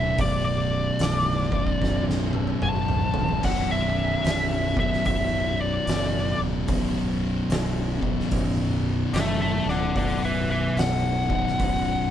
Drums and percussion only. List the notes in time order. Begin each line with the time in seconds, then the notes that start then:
0.18 kick, open hi-hat
0.99 snare, open hi-hat
1.52 kick
1.67 kick
1.82 kick, snare
2.10 snare
2.33 high tom
2.47 high tom
2.62 mid tom
2.88 mid tom
3.14 floor tom
3.29 floor tom
3.43 kick, open hi-hat, crash
4.25 snare, open hi-hat
4.77 kick
4.93 snare
5.05 kick, open hi-hat
5.87 snare, open hi-hat
6.68 kick, open hi-hat
7.50 snare, open hi-hat
8.03 kick
8.20 snare
8.31 kick, open hi-hat
9.14 snare, open hi-hat
9.68 snare
9.96 kick, open hi-hat
10.77 snare, open hi-hat
11.30 kick
11.47 snare
11.59 kick, open hi-hat